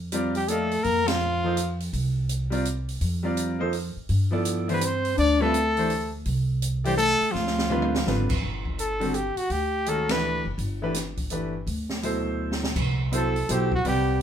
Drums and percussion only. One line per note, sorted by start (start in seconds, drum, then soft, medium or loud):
0.12 closed hi-hat medium
0.35 open hi-hat soft
0.48 closed hi-hat medium
0.71 open hi-hat soft
0.84 open hi-hat soft
1.08 snare medium
1.08 ride medium
1.57 closed hi-hat medium
1.80 open hi-hat soft
1.93 open hi-hat soft
2.29 closed hi-hat medium
2.52 open hi-hat soft
2.65 closed hi-hat medium
2.89 open hi-hat soft
3.01 open hi-hat medium
3.37 closed hi-hat medium
3.73 open hi-hat medium
4.09 open hi-hat soft
4.45 closed hi-hat medium
4.69 open hi-hat soft
4.81 closed hi-hat medium
5.05 open hi-hat soft
5.18 open hi-hat soft
5.54 closed hi-hat medium
5.77 open hi-hat soft
5.90 open hi-hat medium
6.25 open hi-hat soft
6.62 closed hi-hat medium
6.85 open hi-hat soft
6.98 closed hi-hat medium
7.21 open hi-hat soft
7.35 snare soft
7.47 snare medium
7.58 snare medium
7.70 mid tom medium
7.82 mid tom medium
7.95 snare medium
8.07 snare medium
8.29 kick medium
8.29 crash medium
8.65 kick soft
8.79 closed hi-hat medium
9.01 open hi-hat soft
9.14 closed hi-hat soft
9.37 open hi-hat soft
9.50 open hi-hat soft
9.86 closed hi-hat medium
10.09 snare medium
10.09 ride medium
10.58 open hi-hat soft
10.94 snare soft
10.94 closed hi-hat medium
11.17 kick medium
11.17 open hi-hat soft
11.30 closed hi-hat medium
11.67 open hi-hat soft
11.90 snare medium
12.03 open hi-hat soft
12.52 snare medium
12.64 snare medium
12.76 kick medium
12.76 crash medium
13.13 closed hi-hat medium
13.36 open hi-hat soft
13.49 closed hi-hat medium
13.72 kick medium
13.85 open hi-hat soft